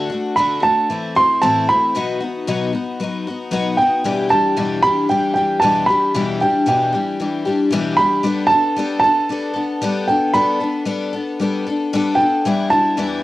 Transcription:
Already playing: A3 D4
0.10 D4 F#4
0.14 A3
0.36 D3 A3 D4 F#4 B5
0.60 D4 F#4 A5
0.65 A3
0.90 E3 A3 C4 E4
1.15 A3 C4 E4 C6
1.42 A2 E3 A3 C4 E4 A5
1.69 A3 C4 E4 B5
1.95 B2 F#3 B3 D#4 F#4
2.20 B3 D#4 F#4
2.47 B2 F#3 B3 D#4 F#4
2.73 B3 D#4 F#4
3.00 F#3 B3 D#4 F#4
3.27 B3 D#4 F#4
3.51 B2 F#3 B3 D#4 F#4
3.77 D#4 F#4 G5
3.82 B3
4.04 E2 B2 E3 G3 D4 G4
4.29 E3 G3 D4 G4 A5
4.57 E2 B2 E3 G3 D4 G4
4.83 E3 G3 D4 G4 B5
5.09 E3 G3 D4 G4 G5
5.34 G3 D4 G4 G5
5.38 E3
5.60 E2 B2 E3 G3 D4 G4 A5
5.86 G4 B5
5.90 E3 G3 D4
6.14 E2 B2 E3 G3 D4 G4
6.40 E3 G3 D4 G4 G5
6.66 E2 B2 E3 G3 D4 G4 G5
6.93 E3 G3 D4 G4
7.20 E3 G3 D4 G4
7.45 E3 G3 D4 G4
7.70 E2 B2 E3 G3 D4 G4
7.97 D4 G4 B5
8.01 E3 G3
8.23 G3 B3 D4 A4
8.47 A4 A5
8.51 B3 D4
8.76 G3 B3 D4 A4
9.00 A5
9.04 B3 D4 A4
9.29 G3 B3 D4 A4
9.54 B3 D4 A4
9.82 G3 B3 D4 A4
10.08 B3 D4 A4 G5
10.33 G3 B3 D4 A4 B5
10.60 B3 D4 A4
10.85 G3 B3 D4 A4
11.13 B3 D4 A4
11.40 G3 B3 D4 A4
11.66 B3 D4 A4
11.93 G3 B3 D4 A4
12.15 A4 G5
12.20 B3 D4
12.45 E2 E3 G3 B3 D4 E4
12.70 G3 B3 D4 E4 A5
12.97 E2 E3 G3 B3 D4 E4

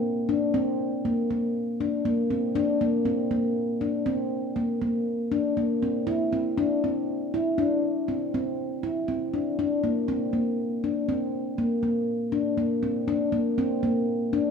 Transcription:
0.29 D4
0.54 C4
1.05 A#3
1.31 A#3
1.81 D4
2.05 A#3
2.30 C4
2.56 D4
2.81 A#3
3.05 C4
3.31 A#3
3.81 D4
4.06 C4
4.56 A#3
4.82 A#3
5.32 D4
5.57 A#3
5.83 C4
6.07 E4
6.33 C4
6.58 D4
6.84 C4
7.34 E4
7.58 D4
8.08 C4
8.34 C4
8.83 E4
9.08 C4
9.34 D4
9.59 D4
9.84 A#3
10.08 C4
10.33 A#3
10.84 D4
11.09 C4
11.58 A#3
11.83 A#3
12.32 D4
12.58 A#3
12.83 C4
13.08 D4
13.32 A#3
13.58 C4
13.83 A#3
14.33 D4

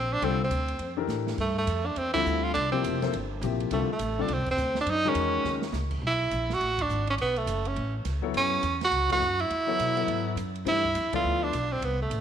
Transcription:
Already playing: A#1 C4
0.13 D4
0.21 C2 D3 G3 C4 F4 A4, ride
0.44 C4
0.50 D2, hi-hat pedal, ride
0.68 ride
0.79 F2, ride
0.97 E3 D4 G4 A4 A#4
1.07 A2, snare, hi-hat pedal
1.27 snare
1.38 G2 A3, kick, crash
1.58 A3
1.67 F2, hi-hat pedal, ride
1.86 D4
1.96 E2 C4, ride
2.14 D3 G3 C4 E4 F4 A4, kick, crash
2.25 D2, hi-hat pedal
2.43 F4
2.54 C2 D4, ride
2.72 C3 F3 A#3 C4 E4 G4
2.83 F1, hi-hat pedal, ride
3.01 F3 A#3 E4 A4 C5, snare, ride
3.13 G1, ride
3.41 A#1 C3 F3 A#3 E4 G4, hi-hat pedal, ride
3.60 ride
3.71 C2 D3 G3 A3 C4 F4 A4, ride
3.89 muted upright bass stroke
3.93 A3
3.99 A1, hi-hat pedal, ride
4.19 D3 G3 C4 D4 F4 A4
4.28 C2, ride
4.34 C4
4.38 G1
4.46 F1, kick, crash
4.51 C4
4.57 D2, hi-hat pedal
4.75 snare
4.81 D4
4.86 F#2, ride
4.91 D#4
5.05 D#3 G#3 C#4 F#4 A#4
5.14 E2, hi-hat pedal, ride
5.44 D#2 D#3 G#3 C#4 F#4 A#4, snare
5.62 snare
5.72 C#2, snare, hi-hat pedal
5.91 kick, crash
6.02 B1
6.07 E4
6.31 A#1, hi-hat pedal, ride
6.50 snare
6.54 F#4
6.60 A1, ride
6.78 D4, kick, ride
6.89 G#1, hi-hat pedal
7.07 C#4, ride
7.17 B1 B3, ride
7.36 A3, ride
7.46 F#1, hi-hat pedal, ride
7.65 C#4, ride
7.76 A1, ride
8.05 C#2, snare, hi-hat pedal, ride
8.22 F#3 B3 E4 A4 C#5, kick
8.34 F#2 C#4, ride
8.63 E2, hi-hat pedal, ride
8.81 F#4, snare, ride
8.91 C#2, ride
9.10 F#3 B3 E4 F#4 A4 C#5, kick, ride
9.20 F#2, hi-hat pedal
9.39 E4, ride
9.50 E2, ride
9.67 F#3 B3 E4 A4 C#5
9.79 B2, hi-hat pedal, ride
9.96 F#3 B3 E4 A4 C#5, ride
10.07 G#2, ride
10.36 F#2, hi-hat pedal, ride
10.55 ride
10.65 G2 E3 A3 D4 E4 G4 C5, ride
10.84 kick
10.94 F2, hi-hat pedal, ride
11.13 F3 B3 E4 F4 A4 D5, muted upright bass stroke, kick, ride
11.24 D2
11.44 D4
11.53 B1, hi-hat pedal, ride
11.72 C4
11.81 C2 B3, ride
12.02 A3
12.10 A1, hi-hat pedal, ride

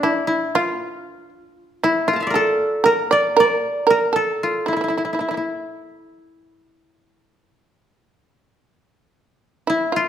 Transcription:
Already playing: D4 A4 A#4 D5
0.03 E4
0.27 E4
0.55 F4
1.83 E4
2.08 F4
2.13 A5 A#5
2.20 E5 F5
2.27 A#4 D5
2.34 A4
2.84 A#4
3.11 D5
3.37 D5
3.87 A#4
4.13 A4
4.43 F4
4.66 E4
4.73 E4
4.81 E4
4.88 E4
4.97 E4
5.05 E4
5.13 E4
5.19 E4
5.29 E4
5.34 E4
9.67 E4
9.92 F4
9.96 F4

